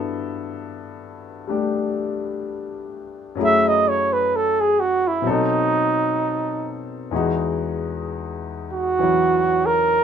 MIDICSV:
0, 0, Header, 1, 3, 480
1, 0, Start_track
1, 0, Tempo, 941915
1, 1712, Time_signature, 4, 2, 24, 8
1, 5116, End_track
2, 0, Start_track
2, 0, Title_t, "Flugelhorn"
2, 0, Program_c, 0, 56
2, 1753, Note_on_c, 0, 76, 90
2, 1875, Note_on_c, 0, 75, 83
2, 1883, Note_off_c, 0, 76, 0
2, 1979, Note_on_c, 0, 73, 88
2, 1987, Note_off_c, 0, 75, 0
2, 2103, Note_on_c, 0, 71, 77
2, 2111, Note_off_c, 0, 73, 0
2, 2221, Note_on_c, 0, 69, 78
2, 2228, Note_off_c, 0, 71, 0
2, 2347, Note_on_c, 0, 68, 79
2, 2355, Note_off_c, 0, 69, 0
2, 2445, Note_on_c, 0, 66, 87
2, 2453, Note_off_c, 0, 68, 0
2, 2586, Note_on_c, 0, 64, 71
2, 2594, Note_off_c, 0, 66, 0
2, 2699, Note_on_c, 0, 63, 82
2, 2707, Note_off_c, 0, 64, 0
2, 3480, Note_off_c, 0, 63, 0
2, 4442, Note_on_c, 0, 66, 81
2, 4923, Note_on_c, 0, 70, 94
2, 4931, Note_off_c, 0, 66, 0
2, 5116, Note_off_c, 0, 70, 0
2, 5116, End_track
3, 0, Start_track
3, 0, Title_t, "Grand piano"
3, 0, Program_c, 1, 0
3, 0, Control_c, 1, 64, 127
3, 0, Note_on_c, 1, 43, 50
3, 0, Note_on_c, 1, 59, 46
3, 0, Note_on_c, 1, 64, 45
3, 0, Note_on_c, 1, 66, 41
3, 0, Note_on_c, 1, 69, 53
3, 751, Note_on_c, 1, 55, 41
3, 758, Note_on_c, 1, 57, 36
3, 761, Note_on_c, 1, 62, 38
3, 767, Note_on_c, 1, 67, 42
3, 1701, Note_off_c, 1, 43, 0
3, 1708, Note_off_c, 1, 66, 0
3, 1708, Note_on_c, 1, 42, 47
3, 1713, Note_off_c, 1, 57, 0
3, 1714, Note_off_c, 1, 55, 0
3, 1715, Note_off_c, 1, 59, 0
3, 1717, Note_on_c, 1, 54, 47
3, 1718, Note_off_c, 1, 62, 0
3, 1720, Control_c, 1, 64, 0
3, 1721, Note_off_c, 1, 64, 0
3, 1721, Note_on_c, 1, 57, 43
3, 1722, Note_off_c, 1, 67, 0
3, 1729, Note_off_c, 1, 69, 0
3, 1730, Note_on_c, 1, 64, 43
3, 1736, Note_on_c, 1, 68, 50
3, 1811, Control_c, 1, 64, 127
3, 2660, Note_on_c, 1, 47, 45
3, 2661, Note_off_c, 1, 54, 0
3, 2667, Note_off_c, 1, 42, 0
3, 2669, Note_on_c, 1, 54, 46
3, 2674, Note_off_c, 1, 57, 0
3, 2676, Control_c, 1, 64, 0
3, 2676, Note_on_c, 1, 60, 46
3, 2678, Note_off_c, 1, 64, 0
3, 2681, Note_off_c, 1, 68, 0
3, 2681, Note_on_c, 1, 63, 41
3, 2685, Note_on_c, 1, 69, 58
3, 2760, Control_c, 1, 64, 127
3, 3623, Note_off_c, 1, 47, 0
3, 3623, Note_on_c, 1, 40, 46
3, 3627, Note_off_c, 1, 54, 0
3, 3630, Note_on_c, 1, 52, 45
3, 3631, Note_off_c, 1, 60, 0
3, 3634, Note_off_c, 1, 63, 0
3, 3635, Note_off_c, 1, 69, 0
3, 3635, Control_c, 1, 64, 0
3, 3635, Note_on_c, 1, 56, 43
3, 3641, Note_on_c, 1, 63, 46
3, 3648, Note_on_c, 1, 66, 48
3, 3710, Control_c, 1, 64, 127
3, 4574, Note_off_c, 1, 52, 0
3, 4582, Note_on_c, 1, 52, 41
3, 4585, Note_on_c, 1, 54, 38
3, 4590, Note_on_c, 1, 61, 42
3, 4597, Note_on_c, 1, 64, 47
3, 5116, Note_off_c, 1, 40, 0
3, 5116, Note_off_c, 1, 52, 0
3, 5116, Note_off_c, 1, 54, 0
3, 5116, Note_off_c, 1, 56, 0
3, 5116, Note_off_c, 1, 61, 0
3, 5116, Note_off_c, 1, 63, 0
3, 5116, Note_off_c, 1, 64, 0
3, 5116, Note_off_c, 1, 66, 0
3, 5116, End_track
0, 0, End_of_file